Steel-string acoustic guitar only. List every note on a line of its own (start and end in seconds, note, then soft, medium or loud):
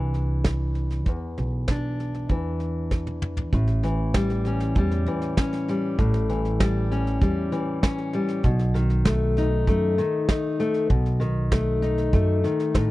0.00 1.73 E3 medium
0.00 1.05 D4 soft
1.08 3.50 E2 medium
1.70 3.50 D4 soft
2.31 3.50 E3 medium
3.54 5.97 A2 medium
3.84 5.06 E3 medium
4.16 4.78 G3 medium
4.47 5.37 C#4 medium
4.78 5.68 G3 medium
5.07 5.96 E3 medium
5.38 5.96 C#4 medium
5.69 6.60 G3 medium
5.99 8.44 A2 medium
6.29 7.51 E3 medium
6.61 7.21 G3 medium
6.91 7.81 C#4 medium
7.22 8.13 G3 medium
7.52 8.41 E3 medium
7.83 8.41 C#4 medium
8.14 8.45 G3 medium
8.44 8.75 B2 medium
8.74 9.97 D#3 medium
9.07 9.68 A3 medium
9.38 10.28 D#4 medium
9.68 10.58 A3 medium
9.98 10.87 D#3 medium
10.30 10.87 D#4 medium
10.60 10.87 A3 medium
10.90 11.21 B2 medium
11.20 12.43 D#3 medium
11.52 12.12 A3 medium
11.82 12.91 D#4 medium
12.13 12.91 A3 medium
12.44 12.91 D#3 medium
12.75 12.91 A2 medium